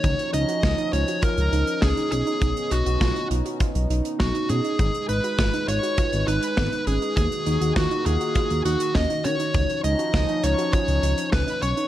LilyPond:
<<
  \new Staff \with { instrumentName = "Lead electric guitar" } { \time 4/4 \key cis \mixolydian \tempo 4 = 101 cis''8 dis''4 cis''8 ais'4 gis'8 gis'8~ | gis'8 fis'4 r4. fis'8 gis'8~ | gis'8 b'4 cis''4 b'4 gis'8 | gis'4 fis'8 gis'4 fis'8 dis''8 cis''8~ |
cis''8 dis''4 cis''8 cis''4 b'8 cis''8 | }
  \new Staff \with { instrumentName = "Synth arpeggio sound" } { \time 4/4 \key cis \mixolydian dis'8 dis'16 fis'16 eis'16 dis'16 eis'16 fis'16 eis'8 dis'8 cis'16 dis'16 cis'16 dis'16 | dis'8 dis'16 fis'16 eis'16 dis'16 eis'16 fis'16 eis'8 dis'8 b16 dis'16 cis'16 dis'16 | dis'8 dis'16 fis'16 eis'16 dis'16 eis'16 fis'16 eis'8 dis'8 b16 dis'16 cis'16 dis'16 | dis'8 dis'16 fis'16 eis'16 dis'16 eis'16 fis'16 eis'8 dis'8 cis'16 dis'16 cis'16 dis'16 |
dis'8 dis'16 fis'16 eis'16 dis'16 eis'16 fis'16 eis'8 dis'8 cis'16 dis'16 cis'16 dis'16 | }
  \new Staff \with { instrumentName = "Analog synth pad" } { \time 4/4 \key cis \mixolydian << { dis'1~ | dis'1 | b'1 | fis'1 |
dis'2.~ dis'8 cis'8 | } \\ { <eis cis'>2.~ <eis cis'>8 <b cis'>8~ | <b cis'>1 | gis1 | <dis ais>1 |
<eis cis'>2.~ <eis cis'>8 <dis b>8 | } >> }
  \new Staff \with { instrumentName = "Analog synth bass" } { \clef bass \time 4/4 \key cis \mixolydian cis,16 r16 cis,16 r16 cis,16 r16 cis,16 r8 cis,16 cis,16 r16 cis,16 r16 b,,16 r16 | b,,16 r16 b,,16 b,,16 b,,16 r16 b,,16 r8 b,,16 b,,16 r16 b,,16 r16 b,16 r16 | gis,,16 r16 gis,,16 r16 gis,,16 r16 gis,,16 r8 gis,,16 gis,,16 r16 gis,,16 r16 gis,,16 r16 | dis,16 r16 dis,16 dis,16 dis,16 r16 dis,16 r8 dis,16 dis,16 r16 dis,16 r16 dis16 r16 |
cis,16 r16 cis,16 r16 cis,16 r16 cis,16 r8 cis,16 cis,16 r16 cis,16 r16 b,,16 r16 | }
  \new DrumStaff \with { instrumentName = "Drums" } \drummode { \time 4/4 <hh bd>16 hh16 hh16 hh16 <bd sn>16 hh16 hh16 hh16 <hh bd>16 hh16 hh16 hh16 <bd sn>16 hh16 hh16 hh16 | <hh bd>16 hh16 hh16 hh16 <bd sn>16 hh16 hh16 hh16 <hh bd>16 hh16 hh16 hh16 <bd sn>16 hh16 hh16 hh16 | <hh bd>16 hh16 hh16 hh16 <bd sn>16 hh16 hh16 hh16 <hh bd>16 hh16 hh16 hh16 <bd sn>16 hh16 hh16 hh16 | <hh bd>16 hh16 hh16 hh16 <bd sn>16 hh16 hh16 hh16 <hh bd>16 hh16 hh16 hh16 <bd sn>16 hh16 hh16 hh16 |
<hh bd>16 hh16 hh16 hh16 <bd sn>16 hh16 hh16 hh16 <hh bd>16 hh16 hh16 hh16 <bd sn>16 hh16 hh16 hh16 | }
>>